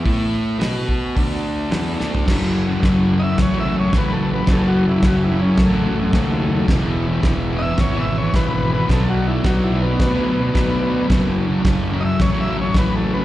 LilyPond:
<<
  \new Staff \with { instrumentName = "Transistor combo organ" } { \time 4/4 \key fis \minor \tempo 4 = 109 << { r4. a''16 gis''16 fis''8. e''16 d''4 | r1 | r1 | r1 |
r1 | r1 | } \\ { <e' a' e''>4 <fis' b' fis''>4 <a' d'' a''>2 | <a' cis'' fis''>1~ | <a' cis'' fis''>1 | <gis' b' e''>1 |
<fis' b' d''>1 | <fis' a' cis''>1 | } >> }
  \new Staff \with { instrumentName = "Transistor combo organ" } { \time 4/4 \key fis \minor r1 | r4 \tuplet 3/2 { r4 <dis'' e''>8 cis''8 e''8 cis''8 b'8 a'8 b'8 } | \tuplet 3/2 { a'8 fis'8 e'8 fis'8 e'8 cis'8 } a2 | r4 \tuplet 3/2 { r4 <dis'' e''>8 cis''8 e''8 cis''8 b'8 b'8 b'8 } |
\tuplet 3/2 { a'8 fis'8 e'8 fis'8 e'8 b8 } b2 | r4 \tuplet 3/2 { r4 <dis'' e''>8 cis''8 e''8 cis''8 b'8 a'8 b'8 } | }
  \new Staff \with { instrumentName = "Distorted electric guitar" } { \clef bass \time 4/4 \key fis \minor <a e' a'>4 <b fis' b'>4 <d a d'>4 <e b e'>8 <d a d'>8 | <fis, cis fis>8. <cis fis>16 <fis, cis fis>8 <fis, cis fis>8. <cis fis>16 <fis, cis fis>8 <fis, cis fis>8. <cis fis>16 | <fis, cis fis>8. <cis fis>16 <fis, cis fis>8 <fis, cis fis>8. <cis fis>16 <fis, cis fis>8 <fis, cis fis>8. <cis fis>16 | <e, b, e>8. <b, e>16 <e, b, e>8 <e, b, e>8. <b, e>16 <e, b, e>8 <e, b, e>8. <b, e>16 |
<b, fis b>8. <fis b>16 <b, fis b>8 <b, fis b>8. <fis b>16 <b, fis b>8 <b, fis b>8. <fis b>16 | <fis, cis fis>8. <cis fis>16 <fis, cis fis>8 <fis, cis fis>8. <cis fis>16 <fis, cis fis>8 <fis, cis fis>8. <cis fis>16 | }
  \new Staff \with { instrumentName = "Fingered electric bass" } { \clef bass \time 4/4 \key fis \minor a,4 b,4 d,4 e,8 d,8 | fis,,4 fis,,4 a,,4 a,,4 | fis,,4 fis,,4 a,,4 dis,4 | e,,4 e,,4 gis,,4 gis,,4 |
b,,4 b,,4 d,4 d,4 | fis,,4 fis,,4 a,,4 a,,4 | }
  \new DrumStaff \with { instrumentName = "Drums" } \drummode { \time 4/4 <hho bd>4 <hho sn>8 bd8 <hho bd>4 <hho sn>8 sn16 tomfh16 | <cymc bd sn>4 <cymc bd sn>4 <cymc bd sn>4 <cymc bd sn>4 | <cymc bd sn>4 <cymc bd sn>4 <cymc bd sn>4 <cymc bd sn>4 | <cymc bd sn>4 <cymc bd sn>4 <cymc bd sn>4 <cymc bd sn>4 |
<cymc bd sn>4 <cymc bd sn>4 <cymc bd sn>4 <cymc bd sn>4 | <cymc bd sn>4 <cymc bd sn>4 <cymc bd sn>4 <cymc bd sn>4 | }
>>